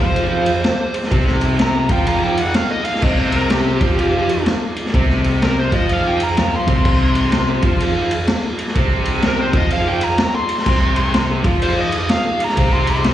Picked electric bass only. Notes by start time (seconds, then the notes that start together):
0.00 F2
1.12 C2
1.89 F2
3.02 C2
3.81 F2
4.94 C2
5.72 F2
6.38 F2
6.68 C2
6.86 C2
7.63 F2
8.76 C2
9.53 F2
10.67 C2
11.44 F2
12.57 C2